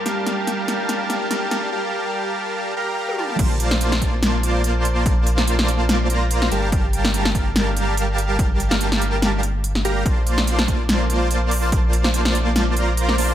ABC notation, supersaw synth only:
X:1
M:4/4
L:1/8
Q:"Swing 16ths" 1/4=144
K:Bb
V:1 name="Supersaw synth"
[G,GBfa]6 [G,GBfa]2 | [G,GBfa]4- [G,GBfa] [G,GBfb]2 [G,GBfa] | [B,Fcda]6 [B,Fcda]2 | [B,Fcda]4- [B,Fcda] [B,Fcdb]2 [G,GBfa] |
[G,GBfa]6 [G,GBfa]2 | [G,GBfa]4- [G,GBfa] z2 [G,GBfb] | [B,Fcda]6 [B,Fcda]2 | [B,Fcda]4- [B,Fcda] [B,Fcdb]2 [B,Fcda] |]